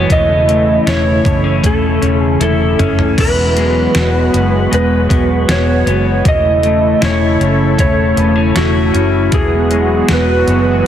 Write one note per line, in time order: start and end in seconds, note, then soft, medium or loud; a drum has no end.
0.00 9.28 E3 medium
0.00 0.17 G#3 medium
0.00 0.17 B3 soft
0.00 0.17 F#4 medium
0.00 0.12 C#5 medium
0.09 0.78 E1 medium
0.09 3.14 C#3 medium
0.09 3.18 E3 medium
0.09 3.14 A3 medium
0.09 3.14 E4 medium
0.09 3.14 A4 medium
0.09 0.90 D#5 loud
0.09 kick medium
0.09 closed hi-hat medium
0.48 1.62 A3 medium
0.48 closed hi-hat soft
0.86 1.20 E1 medium
0.86 2.40 E4 medium
0.86 1.67 C#5 medium
0.86 snare loud
0.86 closed hi-hat medium
1.24 1.59 F#1 medium
1.24 1.44 B3 medium
1.24 kick medium
1.24 closed hi-hat soft
1.44 2.01 C#4 soft
1.63 1.98 E1 medium
1.63 3.25 A3 medium
1.63 2.20 A4 medium
1.63 kick medium
1.63 closed hi-hat medium
2.02 2.36 E1 medium
2.02 2.78 C#4 soft
2.02 closed hi-hat soft
2.20 2.41 G#4 medium
2.40 2.74 E1 medium
2.40 3.95 E4 medium
2.40 3.21 A4 medium
2.40 closed hi-hat medium
2.40 high tom soft
2.79 3.13 F#1 medium
2.79 3.25 C#4 medium
2.79 closed hi-hat soft
2.79 mid tom medium
2.99 floor tom medium
3.18 3.86 E1 medium
3.18 6.24 E3 medium
3.18 6.23 F#3 medium
3.18 6.23 G#3 medium
3.18 6.22 B3 medium
3.18 6.22 F#4 medium
3.18 4.73 B4 medium
3.18 kick medium
3.18 crash medium
3.56 4.70 G#3 medium
3.56 closed hi-hat soft
3.95 4.28 E1 medium
3.95 5.47 F#4 medium
3.95 snare loud
3.95 closed hi-hat medium
4.33 4.67 F#1 medium
4.33 5.08 B3 soft
4.33 closed hi-hat soft
4.71 5.06 E1 loud
4.71 6.33 G#3 medium
4.71 5.52 B4 medium
4.71 closed hi-hat medium
5.09 5.44 E1 medium
5.09 5.85 B3 soft
5.09 kick medium
5.09 closed hi-hat soft
5.48 5.82 E1 medium
5.48 6.33 F#4 medium
5.48 6.28 C#5 medium
5.48 snare loud
5.48 closed hi-hat medium
5.86 6.20 F#1 medium
5.86 6.33 B3 medium
5.86 closed hi-hat soft
6.25 6.93 E1 medium
6.25 9.30 C#3 medium
6.25 9.32 E3 medium
6.25 9.30 A3 medium
6.25 9.31 E4 medium
6.25 9.30 A4 medium
6.25 7.00 D#5 medium
6.25 kick medium
6.25 closed hi-hat medium
6.63 7.77 A3 medium
6.63 closed hi-hat soft
7.01 7.36 E1 medium
7.01 8.55 E4 medium
7.01 7.79 C#5 medium
7.01 snare loud
7.01 closed hi-hat medium
7.40 7.74 F#1 medium
7.40 8.16 C#4 soft
7.40 closed hi-hat soft
7.78 8.13 E1 medium
7.78 9.40 A3 medium
7.78 8.59 C#5 medium
7.78 kick medium
7.78 closed hi-hat medium
8.16 8.51 E1 medium
8.16 8.36 B3 soft
8.16 closed hi-hat soft
8.36 8.92 C#4 soft
8.55 8.90 E1 medium
8.55 10.08 E4 medium
8.55 9.36 F#4 medium
8.55 snare loud
8.55 closed hi-hat medium
8.94 9.28 F#1 medium
8.94 9.40 C#4 medium
8.94 closed hi-hat soft
9.32 10.00 E1 medium
9.32 10.87 E3 medium
9.32 10.87 F#3 medium
9.32 10.87 G#3 medium
9.32 10.87 B3 medium
9.32 10.87 F#4 medium
9.32 10.13 G#4 medium
9.32 kick loud
9.32 closed hi-hat medium
9.70 10.85 G#3 medium
9.70 closed hi-hat soft
10.08 10.44 E1 medium
10.08 10.87 F#4 medium
10.08 snare loud
10.08 closed hi-hat medium
10.13 10.87 B4 medium
10.47 10.82 F#1 medium
10.47 10.87 B3 medium
10.47 closed hi-hat soft